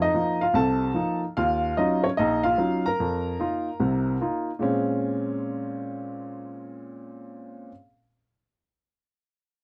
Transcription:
0.02 D#4 D#5
0.14 F3 A#3 D#4
0.41 F4 F5
0.54 C2 C3 A4 A5
0.94 F3 A#3 D#4
1.37 D#2 F4 F5
1.77 F#3 C#4 D#4 F4 D#5
2.04 C#4 C#5
2.17 A#1 D#4 D#5
2.43 F4 F5
2.58 F#3 C#4 D#4 F4
2.86 A#4 A#5
3.00 F2
3.40 A#3 D#4 F4
3.80 C2 C3
4.21 A#3 D#4 F4
4.59 A#2 G#3 C4 C#4

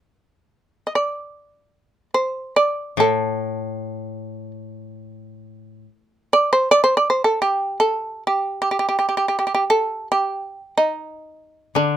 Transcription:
0.87 D#5
0.95 D5
2.14 C5
2.56 D5
2.97 A2 A4
6.33 D5
6.53 C5
6.71 D5
6.84 C5
6.97 D5
7.10 C5
7.24 A4
7.42 G4
7.80 A4
8.27 G4
8.62 G4
8.71 G4
8.79 G4
8.89 G4
8.99 G4
9.09 G4
9.17 G4
9.28 G4
9.39 G4
9.47 G4
9.55 G4
9.70 A4
10.12 G4
10.77 D#4
11.75 D3 D4

